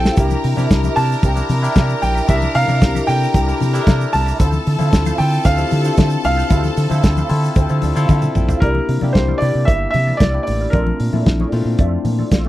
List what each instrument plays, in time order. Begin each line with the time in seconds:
Already playing: tine electric piano C4 E4 F4 G4 A4, string section A4 A5, grand piano G5
0.05 clean electric guitar A4 C5 F5, snare, shaker
0.17 fingered electric bass C2, tine electric piano D4 E4 G4 A#4, clean electric guitar G4 A#4 E5, string section A#4 A#5, kick, closed hi-hat, low conga, shaker
0.30 muted clean electric guitar stroke, high conga, shaker
0.44 fingered electric bass C3, muted clean electric guitar stroke, open hi-hat
0.56 fingered electric bass C3, tine electric piano D4 E4 G4 A#4, clean electric guitar G4 A#4 E5, high conga, shaker
0.70 fingered electric bass C2, kick, snare, closed hi-hat, shaker
0.84 clean electric guitar G4 A#4 E5, muted conga, high conga, shaker
0.96 fingered electric bass C3, tine electric piano D4 E4 G4 A#4, grand piano A5, open hi-hat, low conga, shaker
1.12 muted clean electric guitar stroke, shaker
1.23 fingered electric bass C2, clean electric guitar G4 A#4 G5, kick, closed hi-hat, muted conga, shaker
1.35 tine electric piano D4 E4 G4 A#4, muted clean electric guitar stroke, muted conga, shaker
1.49 fingered electric bass C3, muted clean electric guitar stroke, open hi-hat, high conga, shaker
1.62 tine electric piano D4 E4 G4 A#4, clean electric guitar G4 A#4 E5, shaker
1.76 fingered electric bass C3, clean electric guitar G4 A#4 E5, kick, snare, closed hi-hat, muted conga, high conga, shaker
1.89 muted clean electric guitar stroke, muted conga, shaker
2.02 fingered electric bass A#1, grand piano G5, muted clean electric guitar stroke, open hi-hat, low conga, shaker
2.15 clean electric guitar G4 A#4 E5, shaker
2.28 fingered electric bass C2, tine electric piano D4 E4 G4 A#4, clean electric guitar G4 A#4 E5, grand piano E5, kick, closed hi-hat, muted conga, low conga, shaker
2.41 muted clean electric guitar stroke, high conga, shaker
2.55 fingered electric bass C3, grand piano F5, open hi-hat
2.67 fingered electric bass C3, tine electric piano D4 E4 G4 A#4, clean electric guitar G4 A#4 E5, high conga, shaker
2.82 fingered electric bass C2, kick, snare, closed hi-hat, shaker
2.95 clean electric guitar G4 A#4 E5, high conga, shaker
3.07 fingered electric bass C3, tine electric piano D4 E4 G4 A4, grand piano G5, muted clean electric guitar stroke, open hi-hat, low conga, shaker
3.23 muted clean electric guitar stroke, shaker
3.34 fingered electric bass C2, clean electric guitar G4 A#4 G5, kick, closed hi-hat, muted conga, shaker
3.47 tine electric piano D4 E4 G4 A#4, muted clean electric guitar stroke, shaker
3.60 fingered electric bass C3, muted clean electric guitar stroke, open hi-hat, high conga, shaker
3.73 tine electric piano D4 E4 G4 A4, clean electric guitar G4 A#4 E5, shaker
3.81 tine electric piano A#4
3.87 fingered electric bass C3, clean electric guitar G4 A#4 E5, kick, snare, closed hi-hat, muted conga, high conga, shaker
4.00 muted clean electric guitar stroke, shaker
4.13 fingered electric bass C2, grand piano A5, muted clean electric guitar stroke, open hi-hat, low conga, shaker
4.26 clean electric guitar G4 A#4 E5, shaker
4.39 fingered electric bass D2, tine electric piano C4 E4 F4 A4, clean electric guitar A4 C5 F5, string section A4 A5, kick, closed hi-hat, low conga, shaker
4.52 muted clean electric guitar stroke, muted conga, high conga, shaker
4.66 fingered electric bass D3, muted clean electric guitar stroke, open hi-hat
4.78 fingered electric bass D3, tine electric piano C4 E4 F4 A4, clean electric guitar A4 C5 F5, high conga, shaker
4.93 fingered electric bass D2, kick, snare, closed hi-hat, shaker
5.05 clean electric guitar A4 C5 F5, muted conga, high conga, shaker
5.18 fingered electric bass D3, tine electric piano C4 E4 F4 A4, grand piano G5, muted clean electric guitar stroke, open hi-hat, low conga, shaker
5.32 muted clean electric guitar stroke, shaker
5.44 fingered electric bass D2, clean electric guitar A4 C5 G5, grand piano F5, kick, closed hi-hat, muted conga, shaker
5.58 tine electric piano C4 E4 F4 G4, muted clean electric guitar stroke, muted conga, shaker
5.71 fingered electric bass D3, muted clean electric guitar stroke, open hi-hat, high conga, shaker
5.84 tine electric piano C4 D4 F4 A4, clean electric guitar A4 C5 F5, shaker
5.97 fingered electric bass D3, clean electric guitar A4 C5 F5, kick, snare, closed hi-hat, muted conga, high conga, shaker
6.10 muted clean electric guitar stroke, muted conga, shaker
6.24 fingered electric bass C2, grand piano F5, muted clean electric guitar stroke, open hi-hat, low conga, shaker
6.37 clean electric guitar A4 C5 F5, shaker
6.50 fingered electric bass D2, tine electric piano C4 E4 F4 A4, clean electric guitar A4 C5 F5, kick, closed hi-hat, muted conga, low conga, shaker
6.64 muted clean electric guitar stroke, high conga, shaker
6.77 fingered electric bass D3, muted clean electric guitar stroke, open hi-hat, shaker
6.89 fingered electric bass D3, tine electric piano C4 E4 F4 A4, clean electric guitar A4 C5 F5, high conga, shaker
7.03 fingered electric bass D2, kick, snare, closed hi-hat, muted conga, shaker
7.17 clean electric guitar A4 C5 F5, muted conga, high conga, shaker
7.29 fingered electric bass D3, tine electric piano C4 E4 F4 A4, muted clean electric guitar stroke, open hi-hat, low conga
7.44 muted clean electric guitar stroke, shaker
7.56 fingered electric bass D2, clean electric guitar A4 C5 G5, kick, closed hi-hat, muted conga, shaker
7.69 fingered electric bass D3, tine electric piano C4 E4 F4 A4, muted clean electric guitar stroke, muted conga, shaker
7.82 fingered electric bass D2, tine electric piano D5, muted clean electric guitar stroke, open hi-hat, high conga, shaker
7.95 fingered electric bass D3, tine electric piano C4 E4 F4 A4, clean electric guitar A4 C5 F5, shaker
8.09 fingered electric bass D3, clean electric guitar A4 C5 F5, tine electric piano F5, kick, high tom, muted conga, high conga, shaker
8.22 muted clean electric guitar stroke, mid tom, muted conga, shaker
8.35 fingered electric bass A#1, tine electric piano G5, muted clean electric guitar stroke, mid tom, low conga, shaker
8.49 clean electric guitar A4 C5 F5, floor tom, shaker
8.60 fingered electric bass C2, tine electric piano A#3 D4 E4 G4, clean electric guitar E4 A#4 D5, grand piano A#4, kick, closed hi-hat
8.75 muted clean electric guitar stroke, high conga
8.88 fingered electric bass C3, muted clean electric guitar stroke, open hi-hat
9.01 fingered electric bass C3, tine electric piano A#3 D4 E4 G4, clean electric guitar E4 A#4 D5, high conga
9.13 fingered electric bass C2, grand piano C5, kick, snare, closed hi-hat
9.28 clean electric guitar E4 A#4 D5, high conga
9.38 tine electric piano A#3 D4, grand piano D5, muted clean electric guitar stroke, open hi-hat, low conga
9.42 fingered electric bass C3, tine electric piano E4 G4
9.54 fingered electric bass C3, muted clean electric guitar stroke
9.65 fingered electric bass G1, clean electric guitar E4 A#4 E5, grand piano E5, kick, closed hi-hat
9.81 muted clean electric guitar stroke
9.91 fingered electric bass C3, grand piano E5, muted clean electric guitar stroke, open hi-hat, high conga
10.07 clean electric guitar E4 A#4 D5, high conga
10.17 fingered electric bass C2, clean electric guitar E4 A#4, grand piano D5, kick, closed hi-hat
10.21 clean electric guitar D5, snare, muted conga, high conga
10.33 tine electric piano A#3 D4 E4 G4, muted clean electric guitar stroke
10.43 grand piano D5, open hi-hat
10.48 fingered electric bass A1, muted clean electric guitar stroke, low conga
10.61 clean electric guitar E4 A#4 D5
10.70 fingered electric bass A#1, tine electric piano A3 C4 D4 F4, clean electric guitar F4, grand piano A#4, kick, closed hi-hat, muted conga
10.75 clean electric guitar A4 D5
10.87 muted clean electric guitar stroke, muted conga, high conga
11.00 fingered electric bass A#2, muted clean electric guitar stroke, open hi-hat
11.13 fingered electric bass A#2, tine electric piano A3 C4 D4 E4, clean electric guitar F4 A4 D5, high conga
11.26 fingered electric bass A#1, kick, snare, closed hi-hat, muted conga
11.40 clean electric guitar F4 A4 D5, high conga
11.52 fingered electric bass A#2, tine electric piano A3 C4 D4 F4 C5, muted clean electric guitar stroke, open hi-hat, low conga
11.65 fingered electric bass A#2, muted clean electric guitar stroke
11.79 fingered electric bass F2, clean electric guitar F4 A4 E5, tine electric piano D5, kick, closed hi-hat, muted conga
11.92 muted clean electric guitar stroke
12.05 fingered electric bass A#2, muted clean electric guitar stroke, open hi-hat, high conga
12.19 clean electric guitar F4 A4 D5, high conga
12.31 fingered electric bass A#1, clean electric guitar F4 A4 D5, tine electric piano F5, kick, snare, closed hi-hat, high conga
12.45 tine electric piano A3, muted clean electric guitar stroke, muted conga